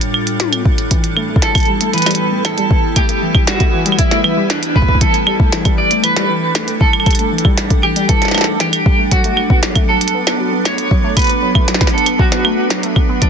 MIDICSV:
0, 0, Header, 1, 5, 480
1, 0, Start_track
1, 0, Tempo, 512821
1, 852, Time_signature, 4, 2, 24, 8
1, 12447, End_track
2, 0, Start_track
2, 0, Title_t, "Clean electric guitar"
2, 0, Program_c, 0, 27
2, 1335, Note_on_c, 0, 69, 83
2, 1780, Note_off_c, 0, 69, 0
2, 1815, Note_on_c, 0, 71, 94
2, 2260, Note_off_c, 0, 71, 0
2, 2294, Note_on_c, 0, 69, 89
2, 2773, Note_on_c, 0, 67, 94
2, 2787, Note_off_c, 0, 69, 0
2, 3219, Note_off_c, 0, 67, 0
2, 3253, Note_on_c, 0, 66, 88
2, 3729, Note_off_c, 0, 66, 0
2, 3733, Note_on_c, 0, 64, 93
2, 4213, Note_on_c, 0, 62, 87
2, 4227, Note_off_c, 0, 64, 0
2, 4452, Note_on_c, 0, 71, 98
2, 4460, Note_off_c, 0, 62, 0
2, 4688, Note_off_c, 0, 71, 0
2, 4692, Note_on_c, 0, 69, 105
2, 5375, Note_off_c, 0, 69, 0
2, 5411, Note_on_c, 0, 74, 107
2, 5646, Note_off_c, 0, 74, 0
2, 5650, Note_on_c, 0, 71, 103
2, 6366, Note_off_c, 0, 71, 0
2, 6370, Note_on_c, 0, 69, 91
2, 7054, Note_off_c, 0, 69, 0
2, 7331, Note_on_c, 0, 67, 103
2, 7568, Note_off_c, 0, 67, 0
2, 7572, Note_on_c, 0, 69, 107
2, 8048, Note_off_c, 0, 69, 0
2, 8051, Note_on_c, 0, 67, 99
2, 8528, Note_off_c, 0, 67, 0
2, 8532, Note_on_c, 0, 66, 84
2, 8979, Note_off_c, 0, 66, 0
2, 9255, Note_on_c, 0, 69, 105
2, 9969, Note_off_c, 0, 69, 0
2, 9973, Note_on_c, 0, 73, 98
2, 10448, Note_off_c, 0, 73, 0
2, 10452, Note_on_c, 0, 71, 104
2, 11168, Note_off_c, 0, 71, 0
2, 11172, Note_on_c, 0, 69, 97
2, 11412, Note_on_c, 0, 66, 81
2, 11419, Note_off_c, 0, 69, 0
2, 12095, Note_off_c, 0, 66, 0
2, 12373, Note_on_c, 0, 62, 88
2, 12447, Note_off_c, 0, 62, 0
2, 12447, End_track
3, 0, Start_track
3, 0, Title_t, "Ambient pad"
3, 0, Program_c, 1, 92
3, 0, Note_on_c, 1, 45, 85
3, 0, Note_on_c, 1, 55, 75
3, 0, Note_on_c, 1, 62, 77
3, 0, Note_on_c, 1, 65, 78
3, 0, Note_on_c, 1, 69, 90
3, 814, Note_off_c, 1, 62, 0
3, 815, Note_off_c, 1, 45, 0
3, 815, Note_off_c, 1, 65, 0
3, 852, Note_on_c, 1, 64, 76
3, 853, Note_on_c, 1, 59, 78
3, 2735, Note_off_c, 1, 69, 0
3, 2770, Note_on_c, 1, 71, 95
3, 4655, Note_off_c, 1, 59, 0
3, 4672, Note_off_c, 1, 71, 0
3, 4690, Note_on_c, 1, 62, 77
3, 4690, Note_on_c, 1, 69, 94
3, 6575, Note_off_c, 1, 64, 0
3, 6613, Note_on_c, 1, 78, 75
3, 8495, Note_off_c, 1, 55, 0
3, 8513, Note_off_c, 1, 78, 0
3, 8532, Note_on_c, 1, 54, 81
3, 8533, Note_on_c, 1, 59, 75
3, 10414, Note_off_c, 1, 69, 0
3, 10453, Note_on_c, 1, 71, 92
3, 12335, Note_off_c, 1, 54, 0
3, 12335, Note_off_c, 1, 59, 0
3, 12353, Note_off_c, 1, 71, 0
3, 12447, Note_off_c, 1, 62, 0
3, 12447, End_track
4, 0, Start_track
4, 0, Title_t, "Synth pluck"
4, 0, Program_c, 2, 84
4, 853, Note_on_c, 2, 52, 89
4, 930, Note_off_c, 2, 52, 0
4, 1094, Note_on_c, 2, 57, 78
4, 1139, Note_off_c, 2, 57, 0
4, 1213, Note_on_c, 2, 57, 73
4, 1290, Note_off_c, 2, 57, 0
4, 1333, Note_on_c, 2, 52, 81
4, 1410, Note_off_c, 2, 52, 0
4, 1573, Note_on_c, 2, 55, 79
4, 1650, Note_off_c, 2, 55, 0
4, 1693, Note_on_c, 2, 57, 75
4, 1807, Note_off_c, 2, 57, 0
4, 1813, Note_on_c, 2, 52, 102
4, 1890, Note_off_c, 2, 52, 0
4, 1933, Note_on_c, 2, 55, 98
4, 1979, Note_off_c, 2, 55, 0
4, 2173, Note_on_c, 2, 57, 73
4, 2287, Note_off_c, 2, 57, 0
4, 2293, Note_on_c, 2, 52, 89
4, 2407, Note_off_c, 2, 52, 0
4, 2413, Note_on_c, 2, 55, 100
4, 2527, Note_off_c, 2, 55, 0
4, 2533, Note_on_c, 2, 52, 70
4, 2610, Note_off_c, 2, 52, 0
4, 2773, Note_on_c, 2, 57, 88
4, 2819, Note_off_c, 2, 57, 0
4, 2893, Note_on_c, 2, 57, 69
4, 2970, Note_off_c, 2, 57, 0
4, 3013, Note_on_c, 2, 52, 75
4, 3090, Note_off_c, 2, 52, 0
4, 3252, Note_on_c, 2, 55, 79
4, 3330, Note_off_c, 2, 55, 0
4, 3373, Note_on_c, 2, 57, 75
4, 3487, Note_off_c, 2, 57, 0
4, 3492, Note_on_c, 2, 52, 106
4, 3569, Note_off_c, 2, 52, 0
4, 3613, Note_on_c, 2, 55, 104
4, 3659, Note_off_c, 2, 55, 0
4, 3853, Note_on_c, 2, 57, 76
4, 3966, Note_off_c, 2, 57, 0
4, 3972, Note_on_c, 2, 52, 78
4, 4086, Note_off_c, 2, 52, 0
4, 4091, Note_on_c, 2, 55, 105
4, 4206, Note_off_c, 2, 55, 0
4, 4212, Note_on_c, 2, 52, 81
4, 4289, Note_off_c, 2, 52, 0
4, 4451, Note_on_c, 2, 57, 73
4, 4498, Note_off_c, 2, 57, 0
4, 4571, Note_on_c, 2, 57, 79
4, 4649, Note_off_c, 2, 57, 0
4, 4691, Note_on_c, 2, 52, 90
4, 4769, Note_off_c, 2, 52, 0
4, 4931, Note_on_c, 2, 55, 74
4, 5009, Note_off_c, 2, 55, 0
4, 5051, Note_on_c, 2, 57, 73
4, 5166, Note_off_c, 2, 57, 0
4, 5171, Note_on_c, 2, 52, 97
4, 5249, Note_off_c, 2, 52, 0
4, 5291, Note_on_c, 2, 55, 104
4, 5338, Note_off_c, 2, 55, 0
4, 5531, Note_on_c, 2, 57, 82
4, 5646, Note_off_c, 2, 57, 0
4, 5651, Note_on_c, 2, 52, 79
4, 5766, Note_off_c, 2, 52, 0
4, 5772, Note_on_c, 2, 55, 105
4, 5886, Note_off_c, 2, 55, 0
4, 5892, Note_on_c, 2, 52, 77
4, 5969, Note_off_c, 2, 52, 0
4, 6132, Note_on_c, 2, 57, 89
4, 6179, Note_off_c, 2, 57, 0
4, 6252, Note_on_c, 2, 57, 74
4, 6329, Note_off_c, 2, 57, 0
4, 6372, Note_on_c, 2, 52, 76
4, 6450, Note_off_c, 2, 52, 0
4, 6612, Note_on_c, 2, 55, 81
4, 6689, Note_off_c, 2, 55, 0
4, 6732, Note_on_c, 2, 57, 72
4, 6846, Note_off_c, 2, 57, 0
4, 6852, Note_on_c, 2, 52, 99
4, 6929, Note_off_c, 2, 52, 0
4, 6972, Note_on_c, 2, 55, 99
4, 7019, Note_off_c, 2, 55, 0
4, 7212, Note_on_c, 2, 57, 73
4, 7326, Note_off_c, 2, 57, 0
4, 7333, Note_on_c, 2, 52, 79
4, 7446, Note_off_c, 2, 52, 0
4, 7452, Note_on_c, 2, 55, 103
4, 7566, Note_off_c, 2, 55, 0
4, 7572, Note_on_c, 2, 52, 83
4, 7649, Note_off_c, 2, 52, 0
4, 7813, Note_on_c, 2, 57, 78
4, 7859, Note_off_c, 2, 57, 0
4, 7933, Note_on_c, 2, 57, 75
4, 8010, Note_off_c, 2, 57, 0
4, 8052, Note_on_c, 2, 52, 85
4, 8129, Note_off_c, 2, 52, 0
4, 8292, Note_on_c, 2, 55, 78
4, 8370, Note_off_c, 2, 55, 0
4, 8412, Note_on_c, 2, 57, 77
4, 8526, Note_off_c, 2, 57, 0
4, 8533, Note_on_c, 2, 54, 100
4, 8610, Note_off_c, 2, 54, 0
4, 8653, Note_on_c, 2, 57, 94
4, 8699, Note_off_c, 2, 57, 0
4, 8893, Note_on_c, 2, 59, 73
4, 9007, Note_off_c, 2, 59, 0
4, 9013, Note_on_c, 2, 54, 82
4, 9126, Note_off_c, 2, 54, 0
4, 9133, Note_on_c, 2, 57, 99
4, 9247, Note_off_c, 2, 57, 0
4, 9253, Note_on_c, 2, 54, 78
4, 9330, Note_off_c, 2, 54, 0
4, 9493, Note_on_c, 2, 59, 84
4, 9539, Note_off_c, 2, 59, 0
4, 9613, Note_on_c, 2, 59, 75
4, 9690, Note_off_c, 2, 59, 0
4, 9732, Note_on_c, 2, 54, 76
4, 9810, Note_off_c, 2, 54, 0
4, 9852, Note_on_c, 2, 59, 79
4, 9966, Note_off_c, 2, 59, 0
4, 9971, Note_on_c, 2, 57, 84
4, 10049, Note_off_c, 2, 57, 0
4, 10212, Note_on_c, 2, 54, 98
4, 10289, Note_off_c, 2, 54, 0
4, 10332, Note_on_c, 2, 57, 102
4, 10378, Note_off_c, 2, 57, 0
4, 10572, Note_on_c, 2, 59, 73
4, 10686, Note_off_c, 2, 59, 0
4, 10692, Note_on_c, 2, 54, 77
4, 10806, Note_off_c, 2, 54, 0
4, 10812, Note_on_c, 2, 57, 95
4, 10926, Note_off_c, 2, 57, 0
4, 10932, Note_on_c, 2, 54, 82
4, 11009, Note_off_c, 2, 54, 0
4, 11172, Note_on_c, 2, 59, 80
4, 11219, Note_off_c, 2, 59, 0
4, 11292, Note_on_c, 2, 59, 78
4, 11369, Note_off_c, 2, 59, 0
4, 11413, Note_on_c, 2, 54, 83
4, 11490, Note_off_c, 2, 54, 0
4, 11532, Note_on_c, 2, 59, 80
4, 11646, Note_off_c, 2, 59, 0
4, 11652, Note_on_c, 2, 57, 81
4, 11729, Note_off_c, 2, 57, 0
4, 11892, Note_on_c, 2, 54, 97
4, 11969, Note_off_c, 2, 54, 0
4, 12012, Note_on_c, 2, 57, 99
4, 12059, Note_off_c, 2, 57, 0
4, 12252, Note_on_c, 2, 59, 78
4, 12366, Note_off_c, 2, 59, 0
4, 12372, Note_on_c, 2, 53, 88
4, 12447, Note_off_c, 2, 53, 0
4, 12447, End_track
5, 0, Start_track
5, 0, Title_t, "Drums"
5, 12, Note_on_c, 9, 42, 37
5, 106, Note_off_c, 9, 42, 0
5, 133, Note_on_c, 9, 75, 50
5, 226, Note_off_c, 9, 75, 0
5, 252, Note_on_c, 9, 42, 36
5, 346, Note_off_c, 9, 42, 0
5, 372, Note_on_c, 9, 38, 114
5, 372, Note_on_c, 9, 42, 78
5, 372, Note_on_c, 9, 48, 60
5, 466, Note_off_c, 9, 38, 0
5, 466, Note_off_c, 9, 42, 0
5, 466, Note_off_c, 9, 48, 0
5, 492, Note_on_c, 9, 42, 56
5, 492, Note_on_c, 9, 75, 87
5, 585, Note_off_c, 9, 42, 0
5, 585, Note_off_c, 9, 75, 0
5, 613, Note_on_c, 9, 36, 114
5, 706, Note_off_c, 9, 36, 0
5, 732, Note_on_c, 9, 42, 37
5, 825, Note_off_c, 9, 42, 0
5, 851, Note_on_c, 9, 42, 76
5, 853, Note_on_c, 9, 36, 104
5, 945, Note_off_c, 9, 42, 0
5, 947, Note_off_c, 9, 36, 0
5, 971, Note_on_c, 9, 42, 39
5, 1065, Note_off_c, 9, 42, 0
5, 1091, Note_on_c, 9, 75, 53
5, 1185, Note_off_c, 9, 75, 0
5, 1273, Note_on_c, 9, 36, 100
5, 1331, Note_on_c, 9, 38, 112
5, 1331, Note_on_c, 9, 42, 84
5, 1366, Note_off_c, 9, 36, 0
5, 1425, Note_off_c, 9, 38, 0
5, 1425, Note_off_c, 9, 42, 0
5, 1451, Note_on_c, 9, 42, 36
5, 1451, Note_on_c, 9, 75, 83
5, 1453, Note_on_c, 9, 36, 106
5, 1476, Note_off_c, 9, 42, 0
5, 1476, Note_on_c, 9, 42, 30
5, 1500, Note_off_c, 9, 42, 0
5, 1500, Note_on_c, 9, 42, 24
5, 1524, Note_off_c, 9, 42, 0
5, 1524, Note_on_c, 9, 42, 21
5, 1545, Note_off_c, 9, 75, 0
5, 1546, Note_off_c, 9, 36, 0
5, 1548, Note_off_c, 9, 42, 0
5, 1548, Note_on_c, 9, 42, 17
5, 1642, Note_off_c, 9, 42, 0
5, 1691, Note_on_c, 9, 42, 57
5, 1785, Note_off_c, 9, 42, 0
5, 1811, Note_on_c, 9, 42, 38
5, 1851, Note_off_c, 9, 42, 0
5, 1851, Note_on_c, 9, 42, 43
5, 1892, Note_off_c, 9, 42, 0
5, 1892, Note_on_c, 9, 42, 52
5, 1932, Note_off_c, 9, 42, 0
5, 1932, Note_on_c, 9, 38, 56
5, 1932, Note_on_c, 9, 42, 54
5, 1932, Note_on_c, 9, 75, 52
5, 1972, Note_off_c, 9, 42, 0
5, 1972, Note_on_c, 9, 42, 62
5, 2011, Note_off_c, 9, 42, 0
5, 2011, Note_on_c, 9, 42, 65
5, 2025, Note_off_c, 9, 38, 0
5, 2025, Note_off_c, 9, 75, 0
5, 2105, Note_off_c, 9, 42, 0
5, 2291, Note_on_c, 9, 38, 119
5, 2291, Note_on_c, 9, 42, 86
5, 2291, Note_on_c, 9, 75, 83
5, 2385, Note_off_c, 9, 38, 0
5, 2385, Note_off_c, 9, 42, 0
5, 2385, Note_off_c, 9, 75, 0
5, 2412, Note_on_c, 9, 42, 56
5, 2505, Note_off_c, 9, 42, 0
5, 2533, Note_on_c, 9, 36, 113
5, 2626, Note_off_c, 9, 36, 0
5, 2772, Note_on_c, 9, 42, 82
5, 2772, Note_on_c, 9, 75, 52
5, 2773, Note_on_c, 9, 36, 113
5, 2865, Note_off_c, 9, 42, 0
5, 2865, Note_off_c, 9, 75, 0
5, 2867, Note_off_c, 9, 36, 0
5, 2892, Note_on_c, 9, 42, 39
5, 2985, Note_off_c, 9, 42, 0
5, 3132, Note_on_c, 9, 75, 77
5, 3133, Note_on_c, 9, 36, 114
5, 3225, Note_off_c, 9, 75, 0
5, 3226, Note_off_c, 9, 36, 0
5, 3251, Note_on_c, 9, 38, 127
5, 3251, Note_on_c, 9, 42, 80
5, 3345, Note_off_c, 9, 38, 0
5, 3345, Note_off_c, 9, 42, 0
5, 3371, Note_on_c, 9, 42, 39
5, 3373, Note_on_c, 9, 36, 109
5, 3465, Note_off_c, 9, 42, 0
5, 3466, Note_off_c, 9, 36, 0
5, 3611, Note_on_c, 9, 42, 58
5, 3671, Note_on_c, 9, 75, 52
5, 3705, Note_off_c, 9, 42, 0
5, 3731, Note_on_c, 9, 42, 85
5, 3733, Note_on_c, 9, 36, 105
5, 3765, Note_off_c, 9, 75, 0
5, 3824, Note_off_c, 9, 42, 0
5, 3826, Note_off_c, 9, 36, 0
5, 3851, Note_on_c, 9, 38, 60
5, 3851, Note_on_c, 9, 42, 37
5, 3944, Note_off_c, 9, 38, 0
5, 3944, Note_off_c, 9, 42, 0
5, 3971, Note_on_c, 9, 75, 73
5, 4065, Note_off_c, 9, 75, 0
5, 4211, Note_on_c, 9, 38, 122
5, 4211, Note_on_c, 9, 42, 81
5, 4305, Note_off_c, 9, 38, 0
5, 4305, Note_off_c, 9, 42, 0
5, 4331, Note_on_c, 9, 42, 58
5, 4424, Note_off_c, 9, 42, 0
5, 4452, Note_on_c, 9, 36, 109
5, 4512, Note_off_c, 9, 36, 0
5, 4512, Note_on_c, 9, 36, 90
5, 4572, Note_off_c, 9, 36, 0
5, 4572, Note_on_c, 9, 36, 77
5, 4632, Note_off_c, 9, 36, 0
5, 4632, Note_on_c, 9, 36, 62
5, 4691, Note_on_c, 9, 42, 80
5, 4692, Note_off_c, 9, 36, 0
5, 4692, Note_on_c, 9, 36, 110
5, 4784, Note_off_c, 9, 42, 0
5, 4785, Note_off_c, 9, 36, 0
5, 4811, Note_on_c, 9, 42, 37
5, 4905, Note_off_c, 9, 42, 0
5, 4931, Note_on_c, 9, 75, 80
5, 5024, Note_off_c, 9, 75, 0
5, 5052, Note_on_c, 9, 36, 107
5, 5145, Note_off_c, 9, 36, 0
5, 5171, Note_on_c, 9, 38, 123
5, 5171, Note_on_c, 9, 42, 78
5, 5265, Note_off_c, 9, 38, 0
5, 5265, Note_off_c, 9, 42, 0
5, 5290, Note_on_c, 9, 42, 38
5, 5290, Note_on_c, 9, 75, 53
5, 5292, Note_on_c, 9, 36, 110
5, 5384, Note_off_c, 9, 42, 0
5, 5384, Note_off_c, 9, 75, 0
5, 5385, Note_off_c, 9, 36, 0
5, 5530, Note_on_c, 9, 42, 52
5, 5624, Note_off_c, 9, 42, 0
5, 5650, Note_on_c, 9, 42, 79
5, 5650, Note_on_c, 9, 75, 78
5, 5744, Note_off_c, 9, 42, 0
5, 5744, Note_off_c, 9, 75, 0
5, 5770, Note_on_c, 9, 38, 57
5, 5770, Note_on_c, 9, 42, 34
5, 5864, Note_off_c, 9, 38, 0
5, 5864, Note_off_c, 9, 42, 0
5, 6131, Note_on_c, 9, 38, 123
5, 6131, Note_on_c, 9, 42, 81
5, 6131, Note_on_c, 9, 75, 51
5, 6224, Note_off_c, 9, 38, 0
5, 6224, Note_off_c, 9, 42, 0
5, 6224, Note_off_c, 9, 75, 0
5, 6250, Note_on_c, 9, 42, 56
5, 6344, Note_off_c, 9, 42, 0
5, 6372, Note_on_c, 9, 36, 124
5, 6466, Note_off_c, 9, 36, 0
5, 6490, Note_on_c, 9, 75, 77
5, 6550, Note_off_c, 9, 75, 0
5, 6550, Note_on_c, 9, 75, 57
5, 6611, Note_off_c, 9, 75, 0
5, 6611, Note_on_c, 9, 42, 35
5, 6611, Note_on_c, 9, 75, 49
5, 6612, Note_on_c, 9, 36, 113
5, 6651, Note_off_c, 9, 42, 0
5, 6651, Note_on_c, 9, 42, 45
5, 6671, Note_off_c, 9, 75, 0
5, 6671, Note_on_c, 9, 75, 41
5, 6691, Note_off_c, 9, 42, 0
5, 6691, Note_on_c, 9, 42, 60
5, 6706, Note_off_c, 9, 36, 0
5, 6731, Note_off_c, 9, 42, 0
5, 6731, Note_on_c, 9, 42, 36
5, 6765, Note_off_c, 9, 75, 0
5, 6825, Note_off_c, 9, 42, 0
5, 6912, Note_on_c, 9, 42, 36
5, 6971, Note_on_c, 9, 75, 50
5, 6972, Note_on_c, 9, 36, 109
5, 7005, Note_off_c, 9, 42, 0
5, 7065, Note_off_c, 9, 75, 0
5, 7066, Note_off_c, 9, 36, 0
5, 7091, Note_on_c, 9, 38, 124
5, 7091, Note_on_c, 9, 42, 77
5, 7184, Note_off_c, 9, 38, 0
5, 7184, Note_off_c, 9, 42, 0
5, 7212, Note_on_c, 9, 36, 111
5, 7212, Note_on_c, 9, 42, 36
5, 7305, Note_off_c, 9, 42, 0
5, 7306, Note_off_c, 9, 36, 0
5, 7331, Note_on_c, 9, 75, 76
5, 7425, Note_off_c, 9, 75, 0
5, 7452, Note_on_c, 9, 42, 55
5, 7546, Note_off_c, 9, 42, 0
5, 7572, Note_on_c, 9, 36, 108
5, 7572, Note_on_c, 9, 42, 78
5, 7665, Note_off_c, 9, 42, 0
5, 7666, Note_off_c, 9, 36, 0
5, 7692, Note_on_c, 9, 38, 27
5, 7692, Note_on_c, 9, 42, 33
5, 7722, Note_off_c, 9, 38, 0
5, 7722, Note_on_c, 9, 38, 30
5, 7752, Note_off_c, 9, 38, 0
5, 7752, Note_on_c, 9, 38, 33
5, 7781, Note_off_c, 9, 38, 0
5, 7781, Note_on_c, 9, 38, 37
5, 7785, Note_off_c, 9, 42, 0
5, 7811, Note_off_c, 9, 38, 0
5, 7811, Note_on_c, 9, 38, 41
5, 7811, Note_on_c, 9, 75, 46
5, 7841, Note_off_c, 9, 38, 0
5, 7841, Note_on_c, 9, 38, 46
5, 7871, Note_off_c, 9, 38, 0
5, 7871, Note_on_c, 9, 38, 49
5, 7901, Note_off_c, 9, 38, 0
5, 7901, Note_on_c, 9, 38, 52
5, 7905, Note_off_c, 9, 75, 0
5, 7994, Note_off_c, 9, 38, 0
5, 8051, Note_on_c, 9, 38, 127
5, 8051, Note_on_c, 9, 42, 75
5, 8144, Note_off_c, 9, 38, 0
5, 8144, Note_off_c, 9, 42, 0
5, 8171, Note_on_c, 9, 42, 51
5, 8171, Note_on_c, 9, 75, 79
5, 8264, Note_off_c, 9, 42, 0
5, 8264, Note_off_c, 9, 75, 0
5, 8293, Note_on_c, 9, 36, 125
5, 8386, Note_off_c, 9, 36, 0
5, 8531, Note_on_c, 9, 42, 71
5, 8533, Note_on_c, 9, 36, 109
5, 8625, Note_off_c, 9, 42, 0
5, 8626, Note_off_c, 9, 36, 0
5, 8651, Note_on_c, 9, 42, 36
5, 8744, Note_off_c, 9, 42, 0
5, 8771, Note_on_c, 9, 75, 51
5, 8865, Note_off_c, 9, 75, 0
5, 8892, Note_on_c, 9, 36, 107
5, 8986, Note_off_c, 9, 36, 0
5, 9011, Note_on_c, 9, 38, 116
5, 9011, Note_on_c, 9, 42, 76
5, 9105, Note_off_c, 9, 38, 0
5, 9105, Note_off_c, 9, 42, 0
5, 9131, Note_on_c, 9, 42, 36
5, 9131, Note_on_c, 9, 75, 79
5, 9132, Note_on_c, 9, 36, 111
5, 9224, Note_off_c, 9, 42, 0
5, 9224, Note_off_c, 9, 75, 0
5, 9226, Note_off_c, 9, 36, 0
5, 9371, Note_on_c, 9, 42, 49
5, 9432, Note_off_c, 9, 42, 0
5, 9432, Note_on_c, 9, 42, 76
5, 9525, Note_off_c, 9, 42, 0
5, 9612, Note_on_c, 9, 38, 55
5, 9612, Note_on_c, 9, 42, 35
5, 9612, Note_on_c, 9, 75, 47
5, 9706, Note_off_c, 9, 38, 0
5, 9706, Note_off_c, 9, 42, 0
5, 9706, Note_off_c, 9, 75, 0
5, 9972, Note_on_c, 9, 38, 116
5, 9972, Note_on_c, 9, 42, 75
5, 9972, Note_on_c, 9, 75, 75
5, 10066, Note_off_c, 9, 38, 0
5, 10066, Note_off_c, 9, 42, 0
5, 10066, Note_off_c, 9, 75, 0
5, 10093, Note_on_c, 9, 42, 52
5, 10186, Note_off_c, 9, 42, 0
5, 10213, Note_on_c, 9, 36, 113
5, 10306, Note_off_c, 9, 36, 0
5, 10453, Note_on_c, 9, 36, 102
5, 10453, Note_on_c, 9, 42, 72
5, 10453, Note_on_c, 9, 75, 51
5, 10476, Note_off_c, 9, 42, 0
5, 10476, Note_on_c, 9, 42, 57
5, 10500, Note_off_c, 9, 42, 0
5, 10500, Note_on_c, 9, 42, 47
5, 10524, Note_off_c, 9, 42, 0
5, 10524, Note_on_c, 9, 42, 38
5, 10546, Note_off_c, 9, 75, 0
5, 10547, Note_off_c, 9, 36, 0
5, 10548, Note_off_c, 9, 42, 0
5, 10548, Note_on_c, 9, 42, 32
5, 10572, Note_off_c, 9, 42, 0
5, 10572, Note_on_c, 9, 42, 36
5, 10666, Note_off_c, 9, 42, 0
5, 10812, Note_on_c, 9, 75, 77
5, 10813, Note_on_c, 9, 36, 108
5, 10906, Note_off_c, 9, 36, 0
5, 10906, Note_off_c, 9, 75, 0
5, 10932, Note_on_c, 9, 38, 110
5, 10932, Note_on_c, 9, 42, 75
5, 10992, Note_off_c, 9, 38, 0
5, 10992, Note_on_c, 9, 38, 86
5, 11026, Note_off_c, 9, 42, 0
5, 11053, Note_off_c, 9, 38, 0
5, 11053, Note_on_c, 9, 36, 108
5, 11053, Note_on_c, 9, 38, 72
5, 11053, Note_on_c, 9, 42, 16
5, 11112, Note_off_c, 9, 38, 0
5, 11112, Note_on_c, 9, 38, 62
5, 11132, Note_off_c, 9, 42, 0
5, 11132, Note_on_c, 9, 42, 21
5, 11147, Note_off_c, 9, 36, 0
5, 11206, Note_off_c, 9, 38, 0
5, 11211, Note_off_c, 9, 42, 0
5, 11211, Note_on_c, 9, 42, 27
5, 11292, Note_off_c, 9, 42, 0
5, 11292, Note_on_c, 9, 42, 52
5, 11292, Note_on_c, 9, 75, 53
5, 11385, Note_off_c, 9, 42, 0
5, 11385, Note_off_c, 9, 75, 0
5, 11413, Note_on_c, 9, 36, 97
5, 11507, Note_off_c, 9, 36, 0
5, 11531, Note_on_c, 9, 38, 52
5, 11531, Note_on_c, 9, 42, 32
5, 11625, Note_off_c, 9, 38, 0
5, 11625, Note_off_c, 9, 42, 0
5, 11651, Note_on_c, 9, 75, 74
5, 11745, Note_off_c, 9, 75, 0
5, 11891, Note_on_c, 9, 38, 114
5, 11891, Note_on_c, 9, 42, 71
5, 11985, Note_off_c, 9, 38, 0
5, 11985, Note_off_c, 9, 42, 0
5, 12011, Note_on_c, 9, 42, 53
5, 12105, Note_off_c, 9, 42, 0
5, 12132, Note_on_c, 9, 75, 52
5, 12133, Note_on_c, 9, 36, 112
5, 12225, Note_off_c, 9, 75, 0
5, 12226, Note_off_c, 9, 36, 0
5, 12371, Note_on_c, 9, 42, 76
5, 12372, Note_on_c, 9, 36, 99
5, 12447, Note_off_c, 9, 36, 0
5, 12447, Note_off_c, 9, 42, 0
5, 12447, End_track
0, 0, End_of_file